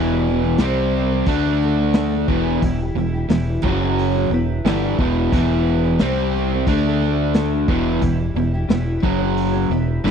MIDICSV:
0, 0, Header, 1, 5, 480
1, 0, Start_track
1, 0, Key_signature, 1, "minor"
1, 0, Tempo, 675676
1, 1861, Time_signature, 4, 2, 24, 8
1, 7181, End_track
2, 0, Start_track
2, 0, Title_t, "Twelve-string acoustic guitar"
2, 0, Program_c, 0, 25
2, 0, Note_on_c, 0, 40, 78
2, 0, Note_on_c, 0, 47, 84
2, 0, Note_on_c, 0, 52, 81
2, 0, Note_on_c, 0, 55, 94
2, 0, Note_on_c, 0, 59, 87
2, 0, Note_on_c, 0, 67, 90
2, 181, Note_off_c, 0, 40, 0
2, 181, Note_off_c, 0, 52, 0
2, 183, Note_off_c, 0, 47, 0
2, 184, Note_off_c, 0, 55, 0
2, 186, Note_off_c, 0, 59, 0
2, 189, Note_on_c, 0, 52, 61
2, 191, Note_off_c, 0, 67, 0
2, 199, Note_on_c, 0, 55, 60
2, 210, Note_on_c, 0, 59, 67
2, 215, Note_on_c, 0, 67, 59
2, 292, Note_off_c, 0, 67, 0
2, 301, Note_on_c, 0, 67, 56
2, 303, Note_off_c, 0, 59, 0
2, 305, Note_off_c, 0, 52, 0
2, 310, Note_off_c, 0, 55, 0
2, 311, Note_on_c, 0, 59, 56
2, 318, Note_on_c, 0, 55, 48
2, 326, Note_on_c, 0, 52, 44
2, 421, Note_off_c, 0, 67, 0
2, 426, Note_off_c, 0, 59, 0
2, 430, Note_off_c, 0, 55, 0
2, 430, Note_on_c, 0, 48, 74
2, 433, Note_off_c, 0, 52, 0
2, 438, Note_on_c, 0, 55, 77
2, 441, Note_on_c, 0, 60, 86
2, 446, Note_on_c, 0, 67, 86
2, 666, Note_off_c, 0, 48, 0
2, 669, Note_off_c, 0, 55, 0
2, 671, Note_off_c, 0, 60, 0
2, 674, Note_off_c, 0, 67, 0
2, 683, Note_on_c, 0, 48, 68
2, 692, Note_on_c, 0, 55, 64
2, 698, Note_on_c, 0, 60, 67
2, 710, Note_on_c, 0, 67, 69
2, 790, Note_off_c, 0, 67, 0
2, 792, Note_off_c, 0, 48, 0
2, 797, Note_off_c, 0, 55, 0
2, 798, Note_on_c, 0, 67, 53
2, 800, Note_off_c, 0, 60, 0
2, 808, Note_on_c, 0, 60, 47
2, 811, Note_on_c, 0, 55, 46
2, 899, Note_off_c, 0, 55, 0
2, 902, Note_on_c, 0, 50, 71
2, 909, Note_off_c, 0, 60, 0
2, 910, Note_off_c, 0, 67, 0
2, 912, Note_on_c, 0, 57, 73
2, 915, Note_on_c, 0, 62, 84
2, 917, Note_on_c, 0, 69, 79
2, 1021, Note_off_c, 0, 50, 0
2, 1027, Note_off_c, 0, 57, 0
2, 1028, Note_off_c, 0, 62, 0
2, 1029, Note_off_c, 0, 69, 0
2, 1038, Note_on_c, 0, 69, 58
2, 1045, Note_on_c, 0, 62, 47
2, 1053, Note_on_c, 0, 57, 41
2, 1143, Note_off_c, 0, 57, 0
2, 1148, Note_off_c, 0, 62, 0
2, 1150, Note_off_c, 0, 69, 0
2, 1150, Note_on_c, 0, 50, 64
2, 1151, Note_on_c, 0, 57, 72
2, 1157, Note_on_c, 0, 62, 70
2, 1165, Note_on_c, 0, 69, 74
2, 1385, Note_off_c, 0, 50, 0
2, 1386, Note_off_c, 0, 57, 0
2, 1389, Note_off_c, 0, 62, 0
2, 1393, Note_off_c, 0, 69, 0
2, 1399, Note_on_c, 0, 50, 72
2, 1402, Note_on_c, 0, 62, 89
2, 1405, Note_on_c, 0, 57, 79
2, 1409, Note_on_c, 0, 69, 84
2, 1500, Note_off_c, 0, 69, 0
2, 1509, Note_on_c, 0, 69, 54
2, 1510, Note_off_c, 0, 50, 0
2, 1511, Note_off_c, 0, 62, 0
2, 1513, Note_off_c, 0, 57, 0
2, 1523, Note_on_c, 0, 62, 50
2, 1532, Note_on_c, 0, 57, 49
2, 1617, Note_on_c, 0, 52, 56
2, 1621, Note_off_c, 0, 57, 0
2, 1624, Note_on_c, 0, 55, 71
2, 1625, Note_off_c, 0, 69, 0
2, 1628, Note_off_c, 0, 62, 0
2, 1631, Note_on_c, 0, 64, 57
2, 1641, Note_on_c, 0, 67, 64
2, 1859, Note_off_c, 0, 52, 0
2, 1863, Note_off_c, 0, 55, 0
2, 1866, Note_off_c, 0, 64, 0
2, 1871, Note_off_c, 0, 67, 0
2, 1876, Note_on_c, 0, 40, 88
2, 1877, Note_on_c, 0, 47, 80
2, 1877, Note_on_c, 0, 52, 77
2, 1883, Note_on_c, 0, 55, 84
2, 1885, Note_on_c, 0, 64, 92
2, 1892, Note_on_c, 0, 67, 91
2, 1988, Note_off_c, 0, 40, 0
2, 1989, Note_off_c, 0, 47, 0
2, 1989, Note_off_c, 0, 52, 0
2, 1989, Note_off_c, 0, 67, 0
2, 1992, Note_off_c, 0, 55, 0
2, 1993, Note_off_c, 0, 64, 0
2, 1998, Note_on_c, 0, 67, 50
2, 2008, Note_on_c, 0, 64, 48
2, 2012, Note_on_c, 0, 55, 50
2, 2022, Note_on_c, 0, 52, 43
2, 2101, Note_off_c, 0, 52, 0
2, 2109, Note_off_c, 0, 55, 0
2, 2109, Note_on_c, 0, 52, 52
2, 2110, Note_off_c, 0, 67, 0
2, 2111, Note_off_c, 0, 64, 0
2, 2117, Note_on_c, 0, 55, 64
2, 2120, Note_on_c, 0, 64, 69
2, 2131, Note_on_c, 0, 67, 67
2, 2223, Note_off_c, 0, 67, 0
2, 2225, Note_off_c, 0, 52, 0
2, 2229, Note_off_c, 0, 55, 0
2, 2230, Note_off_c, 0, 64, 0
2, 2232, Note_on_c, 0, 67, 57
2, 2244, Note_on_c, 0, 64, 51
2, 2247, Note_on_c, 0, 55, 48
2, 2252, Note_on_c, 0, 52, 45
2, 2344, Note_off_c, 0, 52, 0
2, 2346, Note_off_c, 0, 67, 0
2, 2350, Note_off_c, 0, 55, 0
2, 2352, Note_off_c, 0, 64, 0
2, 2353, Note_on_c, 0, 52, 87
2, 2356, Note_on_c, 0, 47, 81
2, 2357, Note_on_c, 0, 40, 80
2, 2359, Note_on_c, 0, 55, 83
2, 2360, Note_on_c, 0, 64, 85
2, 2366, Note_on_c, 0, 67, 78
2, 2579, Note_off_c, 0, 47, 0
2, 2582, Note_on_c, 0, 54, 64
2, 2586, Note_off_c, 0, 55, 0
2, 2587, Note_off_c, 0, 52, 0
2, 2589, Note_off_c, 0, 40, 0
2, 2589, Note_on_c, 0, 61, 65
2, 2591, Note_off_c, 0, 64, 0
2, 2594, Note_off_c, 0, 67, 0
2, 2601, Note_on_c, 0, 66, 75
2, 2608, Note_on_c, 0, 73, 78
2, 2699, Note_off_c, 0, 73, 0
2, 2702, Note_off_c, 0, 54, 0
2, 2705, Note_off_c, 0, 61, 0
2, 2707, Note_on_c, 0, 73, 58
2, 2709, Note_off_c, 0, 66, 0
2, 2718, Note_on_c, 0, 66, 55
2, 2731, Note_on_c, 0, 61, 49
2, 2937, Note_off_c, 0, 73, 0
2, 2945, Note_on_c, 0, 73, 55
2, 2948, Note_off_c, 0, 66, 0
2, 2954, Note_off_c, 0, 61, 0
2, 2956, Note_on_c, 0, 66, 52
2, 2963, Note_on_c, 0, 61, 49
2, 3063, Note_off_c, 0, 73, 0
2, 3068, Note_on_c, 0, 59, 63
2, 3069, Note_off_c, 0, 66, 0
2, 3072, Note_off_c, 0, 61, 0
2, 3075, Note_on_c, 0, 64, 65
2, 3081, Note_on_c, 0, 67, 68
2, 3082, Note_on_c, 0, 71, 69
2, 3305, Note_off_c, 0, 59, 0
2, 3308, Note_off_c, 0, 64, 0
2, 3311, Note_off_c, 0, 67, 0
2, 3312, Note_off_c, 0, 71, 0
2, 3313, Note_on_c, 0, 52, 73
2, 3316, Note_on_c, 0, 59, 78
2, 3325, Note_on_c, 0, 64, 87
2, 3325, Note_on_c, 0, 67, 88
2, 3329, Note_on_c, 0, 71, 84
2, 3427, Note_off_c, 0, 52, 0
2, 3428, Note_off_c, 0, 59, 0
2, 3428, Note_off_c, 0, 71, 0
2, 3433, Note_off_c, 0, 64, 0
2, 3433, Note_off_c, 0, 67, 0
2, 3436, Note_on_c, 0, 71, 56
2, 3443, Note_on_c, 0, 67, 53
2, 3458, Note_on_c, 0, 64, 47
2, 3549, Note_off_c, 0, 71, 0
2, 3552, Note_off_c, 0, 67, 0
2, 3559, Note_off_c, 0, 64, 0
2, 3559, Note_on_c, 0, 59, 61
2, 3570, Note_on_c, 0, 64, 58
2, 3573, Note_on_c, 0, 67, 67
2, 3576, Note_on_c, 0, 71, 65
2, 3790, Note_off_c, 0, 59, 0
2, 3795, Note_off_c, 0, 64, 0
2, 3797, Note_off_c, 0, 67, 0
2, 3798, Note_off_c, 0, 71, 0
2, 3805, Note_on_c, 0, 52, 89
2, 3807, Note_on_c, 0, 59, 81
2, 3810, Note_on_c, 0, 64, 85
2, 3814, Note_on_c, 0, 67, 85
2, 3814, Note_on_c, 0, 71, 94
2, 3903, Note_off_c, 0, 71, 0
2, 3911, Note_on_c, 0, 71, 53
2, 3913, Note_off_c, 0, 52, 0
2, 3914, Note_off_c, 0, 59, 0
2, 3915, Note_off_c, 0, 64, 0
2, 3916, Note_off_c, 0, 67, 0
2, 3924, Note_on_c, 0, 67, 52
2, 3928, Note_on_c, 0, 64, 47
2, 4024, Note_off_c, 0, 64, 0
2, 4026, Note_off_c, 0, 71, 0
2, 4026, Note_on_c, 0, 59, 68
2, 4031, Note_off_c, 0, 67, 0
2, 4032, Note_on_c, 0, 64, 65
2, 4040, Note_on_c, 0, 67, 64
2, 4048, Note_on_c, 0, 71, 61
2, 4142, Note_off_c, 0, 71, 0
2, 4144, Note_off_c, 0, 59, 0
2, 4147, Note_off_c, 0, 64, 0
2, 4150, Note_off_c, 0, 67, 0
2, 4150, Note_on_c, 0, 71, 60
2, 4162, Note_on_c, 0, 67, 51
2, 4169, Note_on_c, 0, 64, 47
2, 4266, Note_off_c, 0, 71, 0
2, 4266, Note_on_c, 0, 48, 86
2, 4268, Note_off_c, 0, 67, 0
2, 4271, Note_off_c, 0, 64, 0
2, 4274, Note_on_c, 0, 60, 75
2, 4277, Note_on_c, 0, 55, 89
2, 4277, Note_on_c, 0, 67, 93
2, 4501, Note_off_c, 0, 48, 0
2, 4507, Note_off_c, 0, 60, 0
2, 4509, Note_off_c, 0, 55, 0
2, 4509, Note_off_c, 0, 67, 0
2, 4509, Note_on_c, 0, 48, 66
2, 4523, Note_on_c, 0, 55, 71
2, 4533, Note_on_c, 0, 60, 65
2, 4534, Note_on_c, 0, 67, 72
2, 4625, Note_off_c, 0, 48, 0
2, 4632, Note_off_c, 0, 55, 0
2, 4633, Note_off_c, 0, 67, 0
2, 4637, Note_off_c, 0, 60, 0
2, 4642, Note_on_c, 0, 67, 52
2, 4647, Note_on_c, 0, 60, 53
2, 4656, Note_on_c, 0, 55, 51
2, 4751, Note_off_c, 0, 67, 0
2, 4752, Note_off_c, 0, 55, 0
2, 4754, Note_off_c, 0, 60, 0
2, 4755, Note_on_c, 0, 50, 74
2, 4757, Note_on_c, 0, 57, 82
2, 4764, Note_on_c, 0, 62, 82
2, 4767, Note_on_c, 0, 69, 85
2, 4868, Note_off_c, 0, 50, 0
2, 4869, Note_off_c, 0, 57, 0
2, 4873, Note_off_c, 0, 62, 0
2, 4874, Note_off_c, 0, 69, 0
2, 4881, Note_on_c, 0, 69, 50
2, 4896, Note_on_c, 0, 62, 53
2, 4902, Note_on_c, 0, 57, 45
2, 4987, Note_on_c, 0, 50, 70
2, 4991, Note_off_c, 0, 69, 0
2, 4993, Note_off_c, 0, 57, 0
2, 4993, Note_off_c, 0, 62, 0
2, 5001, Note_on_c, 0, 57, 65
2, 5001, Note_on_c, 0, 62, 71
2, 5013, Note_on_c, 0, 69, 70
2, 5224, Note_off_c, 0, 50, 0
2, 5224, Note_off_c, 0, 57, 0
2, 5227, Note_off_c, 0, 62, 0
2, 5232, Note_on_c, 0, 50, 75
2, 5233, Note_off_c, 0, 69, 0
2, 5233, Note_on_c, 0, 57, 81
2, 5236, Note_on_c, 0, 62, 89
2, 5242, Note_on_c, 0, 69, 85
2, 5346, Note_off_c, 0, 50, 0
2, 5347, Note_off_c, 0, 57, 0
2, 5348, Note_off_c, 0, 62, 0
2, 5351, Note_off_c, 0, 69, 0
2, 5359, Note_on_c, 0, 69, 54
2, 5372, Note_on_c, 0, 62, 50
2, 5381, Note_on_c, 0, 57, 48
2, 5465, Note_on_c, 0, 52, 57
2, 5470, Note_off_c, 0, 69, 0
2, 5474, Note_off_c, 0, 57, 0
2, 5476, Note_off_c, 0, 62, 0
2, 5477, Note_on_c, 0, 55, 64
2, 5485, Note_on_c, 0, 64, 62
2, 5490, Note_on_c, 0, 67, 60
2, 5703, Note_off_c, 0, 52, 0
2, 5704, Note_on_c, 0, 47, 86
2, 5705, Note_off_c, 0, 55, 0
2, 5705, Note_on_c, 0, 40, 81
2, 5706, Note_off_c, 0, 64, 0
2, 5710, Note_on_c, 0, 52, 87
2, 5712, Note_off_c, 0, 67, 0
2, 5714, Note_on_c, 0, 55, 86
2, 5714, Note_on_c, 0, 64, 87
2, 5720, Note_on_c, 0, 67, 83
2, 5814, Note_off_c, 0, 67, 0
2, 5816, Note_off_c, 0, 64, 0
2, 5819, Note_off_c, 0, 55, 0
2, 5822, Note_off_c, 0, 47, 0
2, 5823, Note_off_c, 0, 40, 0
2, 5823, Note_on_c, 0, 67, 54
2, 5825, Note_off_c, 0, 52, 0
2, 5825, Note_on_c, 0, 64, 49
2, 5828, Note_on_c, 0, 55, 47
2, 5839, Note_on_c, 0, 52, 39
2, 5926, Note_off_c, 0, 52, 0
2, 5930, Note_off_c, 0, 55, 0
2, 5933, Note_off_c, 0, 64, 0
2, 5935, Note_on_c, 0, 52, 58
2, 5939, Note_on_c, 0, 55, 57
2, 5941, Note_off_c, 0, 67, 0
2, 5942, Note_on_c, 0, 64, 66
2, 5953, Note_on_c, 0, 67, 71
2, 6057, Note_off_c, 0, 52, 0
2, 6057, Note_off_c, 0, 67, 0
2, 6058, Note_off_c, 0, 64, 0
2, 6059, Note_off_c, 0, 55, 0
2, 6065, Note_on_c, 0, 67, 54
2, 6066, Note_on_c, 0, 64, 54
2, 6076, Note_on_c, 0, 55, 53
2, 6081, Note_on_c, 0, 52, 44
2, 6175, Note_on_c, 0, 40, 76
2, 6177, Note_off_c, 0, 52, 0
2, 6178, Note_off_c, 0, 64, 0
2, 6179, Note_off_c, 0, 55, 0
2, 6180, Note_on_c, 0, 47, 88
2, 6183, Note_off_c, 0, 67, 0
2, 6185, Note_on_c, 0, 52, 92
2, 6187, Note_on_c, 0, 64, 88
2, 6188, Note_on_c, 0, 55, 81
2, 6193, Note_on_c, 0, 67, 90
2, 6404, Note_off_c, 0, 47, 0
2, 6407, Note_on_c, 0, 54, 68
2, 6416, Note_off_c, 0, 55, 0
2, 6417, Note_off_c, 0, 40, 0
2, 6419, Note_off_c, 0, 64, 0
2, 6419, Note_on_c, 0, 61, 65
2, 6422, Note_off_c, 0, 52, 0
2, 6422, Note_on_c, 0, 66, 67
2, 6425, Note_off_c, 0, 67, 0
2, 6428, Note_on_c, 0, 73, 71
2, 6530, Note_off_c, 0, 73, 0
2, 6533, Note_off_c, 0, 54, 0
2, 6538, Note_on_c, 0, 73, 54
2, 6539, Note_off_c, 0, 61, 0
2, 6541, Note_off_c, 0, 66, 0
2, 6549, Note_on_c, 0, 66, 53
2, 6560, Note_on_c, 0, 61, 40
2, 6754, Note_off_c, 0, 73, 0
2, 6763, Note_on_c, 0, 73, 54
2, 6768, Note_off_c, 0, 66, 0
2, 6776, Note_on_c, 0, 66, 46
2, 6778, Note_off_c, 0, 61, 0
2, 6787, Note_on_c, 0, 61, 43
2, 6891, Note_off_c, 0, 73, 0
2, 6895, Note_off_c, 0, 61, 0
2, 6895, Note_on_c, 0, 59, 72
2, 6898, Note_off_c, 0, 66, 0
2, 6898, Note_on_c, 0, 64, 65
2, 6905, Note_on_c, 0, 67, 68
2, 6913, Note_on_c, 0, 71, 71
2, 7123, Note_off_c, 0, 59, 0
2, 7124, Note_off_c, 0, 64, 0
2, 7129, Note_off_c, 0, 67, 0
2, 7131, Note_on_c, 0, 52, 78
2, 7131, Note_on_c, 0, 59, 69
2, 7132, Note_on_c, 0, 64, 88
2, 7138, Note_on_c, 0, 67, 93
2, 7139, Note_off_c, 0, 71, 0
2, 7147, Note_on_c, 0, 71, 89
2, 7181, Note_off_c, 0, 52, 0
2, 7181, Note_off_c, 0, 59, 0
2, 7181, Note_off_c, 0, 64, 0
2, 7181, Note_off_c, 0, 67, 0
2, 7181, Note_off_c, 0, 71, 0
2, 7181, End_track
3, 0, Start_track
3, 0, Title_t, "Overdriven electric guitar"
3, 0, Program_c, 1, 29
3, 1622, Note_on_c, 1, 47, 92
3, 1624, Note_on_c, 1, 40, 81
3, 1855, Note_off_c, 1, 40, 0
3, 1855, Note_off_c, 1, 47, 0
3, 2117, Note_on_c, 1, 40, 59
3, 2119, Note_on_c, 1, 47, 57
3, 2301, Note_off_c, 1, 40, 0
3, 2302, Note_off_c, 1, 47, 0
3, 2591, Note_on_c, 1, 42, 92
3, 2598, Note_on_c, 1, 49, 82
3, 3059, Note_off_c, 1, 42, 0
3, 3062, Note_off_c, 1, 49, 0
3, 3081, Note_on_c, 1, 40, 73
3, 3084, Note_on_c, 1, 47, 71
3, 3263, Note_off_c, 1, 40, 0
3, 3265, Note_off_c, 1, 47, 0
3, 3311, Note_on_c, 1, 43, 87
3, 3318, Note_on_c, 1, 50, 97
3, 3321, Note_on_c, 1, 55, 93
3, 3539, Note_off_c, 1, 43, 0
3, 3543, Note_off_c, 1, 50, 0
3, 3544, Note_off_c, 1, 55, 0
3, 3546, Note_on_c, 1, 40, 80
3, 3550, Note_on_c, 1, 47, 81
3, 3552, Note_on_c, 1, 52, 82
3, 3774, Note_off_c, 1, 40, 0
3, 3779, Note_off_c, 1, 47, 0
3, 3780, Note_off_c, 1, 52, 0
3, 3783, Note_on_c, 1, 40, 77
3, 3792, Note_on_c, 1, 47, 82
3, 4255, Note_off_c, 1, 40, 0
3, 4259, Note_off_c, 1, 47, 0
3, 5459, Note_on_c, 1, 40, 75
3, 5467, Note_on_c, 1, 47, 85
3, 5693, Note_off_c, 1, 40, 0
3, 5696, Note_off_c, 1, 47, 0
3, 5945, Note_on_c, 1, 47, 63
3, 5946, Note_on_c, 1, 40, 55
3, 6135, Note_off_c, 1, 40, 0
3, 6135, Note_off_c, 1, 47, 0
3, 6412, Note_on_c, 1, 42, 84
3, 6416, Note_on_c, 1, 49, 84
3, 6888, Note_off_c, 1, 42, 0
3, 6891, Note_off_c, 1, 49, 0
3, 6903, Note_on_c, 1, 47, 75
3, 6904, Note_on_c, 1, 40, 57
3, 7093, Note_off_c, 1, 40, 0
3, 7093, Note_off_c, 1, 47, 0
3, 7134, Note_on_c, 1, 43, 83
3, 7139, Note_on_c, 1, 50, 108
3, 7141, Note_on_c, 1, 55, 103
3, 7181, Note_off_c, 1, 43, 0
3, 7181, Note_off_c, 1, 50, 0
3, 7181, Note_off_c, 1, 55, 0
3, 7181, End_track
4, 0, Start_track
4, 0, Title_t, "Fingered electric bass"
4, 0, Program_c, 2, 33
4, 0, Note_on_c, 2, 28, 92
4, 390, Note_off_c, 2, 28, 0
4, 414, Note_on_c, 2, 36, 88
4, 869, Note_off_c, 2, 36, 0
4, 904, Note_on_c, 2, 38, 93
4, 1594, Note_off_c, 2, 38, 0
4, 1620, Note_on_c, 2, 28, 90
4, 1844, Note_off_c, 2, 28, 0
4, 1866, Note_on_c, 2, 28, 81
4, 2087, Note_off_c, 2, 28, 0
4, 2093, Note_on_c, 2, 28, 74
4, 2320, Note_off_c, 2, 28, 0
4, 2337, Note_on_c, 2, 28, 75
4, 2562, Note_off_c, 2, 28, 0
4, 2579, Note_on_c, 2, 30, 95
4, 3032, Note_off_c, 2, 30, 0
4, 3055, Note_on_c, 2, 28, 79
4, 3281, Note_off_c, 2, 28, 0
4, 3300, Note_on_c, 2, 31, 90
4, 3524, Note_off_c, 2, 31, 0
4, 3541, Note_on_c, 2, 28, 92
4, 3764, Note_off_c, 2, 28, 0
4, 3782, Note_on_c, 2, 28, 90
4, 4233, Note_off_c, 2, 28, 0
4, 4269, Note_on_c, 2, 36, 92
4, 4716, Note_off_c, 2, 36, 0
4, 4739, Note_on_c, 2, 38, 83
4, 5431, Note_off_c, 2, 38, 0
4, 5455, Note_on_c, 2, 28, 90
4, 5681, Note_off_c, 2, 28, 0
4, 5698, Note_on_c, 2, 28, 84
4, 5922, Note_off_c, 2, 28, 0
4, 5926, Note_on_c, 2, 28, 76
4, 6156, Note_off_c, 2, 28, 0
4, 6173, Note_on_c, 2, 28, 74
4, 6399, Note_off_c, 2, 28, 0
4, 6416, Note_on_c, 2, 30, 86
4, 6869, Note_off_c, 2, 30, 0
4, 6888, Note_on_c, 2, 28, 75
4, 7116, Note_off_c, 2, 28, 0
4, 7132, Note_on_c, 2, 31, 84
4, 7181, Note_off_c, 2, 31, 0
4, 7181, End_track
5, 0, Start_track
5, 0, Title_t, "Drums"
5, 412, Note_on_c, 9, 46, 49
5, 416, Note_on_c, 9, 38, 103
5, 483, Note_off_c, 9, 46, 0
5, 487, Note_off_c, 9, 38, 0
5, 895, Note_on_c, 9, 46, 49
5, 901, Note_on_c, 9, 36, 99
5, 966, Note_off_c, 9, 46, 0
5, 972, Note_off_c, 9, 36, 0
5, 1375, Note_on_c, 9, 46, 47
5, 1378, Note_on_c, 9, 38, 108
5, 1446, Note_off_c, 9, 46, 0
5, 1449, Note_off_c, 9, 38, 0
5, 1621, Note_on_c, 9, 36, 93
5, 1692, Note_off_c, 9, 36, 0
5, 1863, Note_on_c, 9, 36, 87
5, 1864, Note_on_c, 9, 46, 51
5, 1934, Note_off_c, 9, 36, 0
5, 1935, Note_off_c, 9, 46, 0
5, 2342, Note_on_c, 9, 46, 53
5, 2345, Note_on_c, 9, 38, 100
5, 2413, Note_off_c, 9, 46, 0
5, 2416, Note_off_c, 9, 38, 0
5, 2585, Note_on_c, 9, 36, 88
5, 2656, Note_off_c, 9, 36, 0
5, 2834, Note_on_c, 9, 46, 46
5, 2905, Note_off_c, 9, 46, 0
5, 3307, Note_on_c, 9, 46, 49
5, 3311, Note_on_c, 9, 38, 99
5, 3378, Note_off_c, 9, 46, 0
5, 3382, Note_off_c, 9, 38, 0
5, 3543, Note_on_c, 9, 36, 94
5, 3614, Note_off_c, 9, 36, 0
5, 3783, Note_on_c, 9, 36, 96
5, 3786, Note_on_c, 9, 46, 49
5, 3854, Note_off_c, 9, 36, 0
5, 3857, Note_off_c, 9, 46, 0
5, 4255, Note_on_c, 9, 46, 43
5, 4259, Note_on_c, 9, 38, 103
5, 4326, Note_off_c, 9, 46, 0
5, 4330, Note_off_c, 9, 38, 0
5, 4738, Note_on_c, 9, 36, 100
5, 4741, Note_on_c, 9, 46, 44
5, 4809, Note_off_c, 9, 36, 0
5, 4812, Note_off_c, 9, 46, 0
5, 5216, Note_on_c, 9, 46, 46
5, 5220, Note_on_c, 9, 38, 94
5, 5287, Note_off_c, 9, 46, 0
5, 5291, Note_off_c, 9, 38, 0
5, 5458, Note_on_c, 9, 36, 99
5, 5529, Note_off_c, 9, 36, 0
5, 5695, Note_on_c, 9, 46, 46
5, 5697, Note_on_c, 9, 36, 79
5, 5766, Note_off_c, 9, 46, 0
5, 5768, Note_off_c, 9, 36, 0
5, 6179, Note_on_c, 9, 46, 50
5, 6182, Note_on_c, 9, 38, 103
5, 6250, Note_off_c, 9, 46, 0
5, 6253, Note_off_c, 9, 38, 0
5, 6417, Note_on_c, 9, 36, 86
5, 6488, Note_off_c, 9, 36, 0
5, 6659, Note_on_c, 9, 46, 50
5, 6730, Note_off_c, 9, 46, 0
5, 7150, Note_on_c, 9, 38, 58
5, 7181, Note_off_c, 9, 38, 0
5, 7181, End_track
0, 0, End_of_file